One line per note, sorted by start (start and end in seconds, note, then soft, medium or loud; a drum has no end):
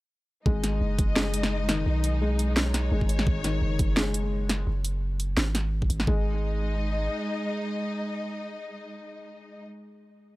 0.46 0.80 G#1 loud
0.46 4.63 G#3 medium
0.46 1.15 G#3 medium
0.46 4.63 D#4 medium
0.46 2.54 D#5 medium
0.46 kick loud
0.64 snare soft
0.64 closed hi-hat medium
0.81 1.85 F#1 loud
0.99 kick loud
0.99 closed hi-hat medium
1.16 1.67 G#3 medium
1.16 snare loud
1.34 closed hi-hat medium
1.43 snare medium
1.69 1.80 D#3 medium
1.69 snare medium
1.69 closed hi-hat medium
1.86 2.90 B1 medium
2.04 closed hi-hat medium
2.22 2.90 G#3 medium
2.39 closed hi-hat medium
2.56 4.65 C#5 medium
2.56 snare loud
2.74 snare medium
2.74 closed hi-hat medium
2.92 3.25 G#1 loud
2.92 3.43 G#3 medium
3.01 kick medium
3.09 closed hi-hat medium
3.19 snare medium
3.27 3.61 G#1 medium
3.27 kick loud
3.44 3.55 D#3 medium
3.44 snare soft
3.44 closed hi-hat medium
3.62 4.66 F#1 loud
3.79 kick loud
3.79 closed hi-hat medium
3.97 4.66 G#3 medium
3.97 snare loud
4.14 closed hi-hat medium
4.49 snare medium
4.49 closed hi-hat medium
4.67 5.36 F#1 medium
4.85 closed hi-hat medium
5.20 closed hi-hat medium
5.37 5.89 G#1 loud
5.37 snare loud
5.55 snare medium
5.55 closed hi-hat medium
5.82 kick medium
5.90 6.06 G#1 loud
5.90 closed hi-hat medium
6.00 snare medium
6.07 7.09 G#1 medium
6.07 9.64 G#3 medium
6.07 6.24 G#3 loud
6.07 9.64 D#4 medium
6.07 9.64 D#5 medium
6.07 kick loud